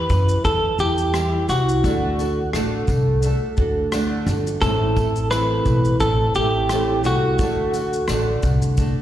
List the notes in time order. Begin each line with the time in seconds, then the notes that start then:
Already playing: E3 B3 E4 G4 B4
0.10 F#2, kick, tambourine, shaker
0.29 shaker
0.44 E2 G3 B3 E4 G4 A4, kick, tambourine, shaker
0.79 E2 B3 E4 G4, shaker
0.98 shaker
1.14 E3 G3 B3 E4 G4, cross-stick, tambourine, shaker
1.49 C2 B3 E4 F#4, cross-stick, tambourine, shaker
1.69 shaker
1.84 D2 D3 A3 D4 F#4 A4, kick, tambourine, shaker
2.19 D4 F#4 A4, tambourine, shaker
2.53 A1 D3 A3 D4 F#4 A4, cross-stick, tambourine, shaker
2.88 C2, kick, tambourine, shaker
3.21 A3 D4 F#4 A4, shaker
3.26 tambourine
3.57 D2 D4 F#4 A4, kick, shaker
3.92 D3 A3 D4 F#4 A4, cross-stick, tambourine, shaker
4.26 G1 D4 F#4 A4, cross-stick, tambourine, shaker
4.47 shaker
4.62 A1 A2 E3 A3 C4 E4 A4, kick, tambourine, shaker
4.96 A3 C4 E4 A4, kick, tambourine, shaker
5.16 shaker
5.31 A2 E3 A3 C4 E4 A4 B4, cross-stick, tambourine, shaker
5.65 B1, kick, tambourine, shaker
5.85 shaker
6.00 A1 A3 C4 E4 A4, kick, tambourine, shaker
6.35 A1 A3 C4 E4 G4 A4, shaker
6.69 A2 E3 A3 C4 E4 A4, cross-stick, tambourine, shaker
7.04 C2 A3 C4 E4 F#4 A4, cross-stick, tambourine, shaker
7.39 D2 D3 A3 D4 F#4 A4, kick, tambourine, shaker
7.73 D4 F#4 A4, tambourine, shaker
7.93 shaker
8.08 A1 D3 A3 D4 F#4 A4, cross-stick, tambourine, shaker
8.43 C2, kick, tambourine, shaker
8.62 shaker
8.77 A3 D4 F#4 A4, kick, tambourine, shaker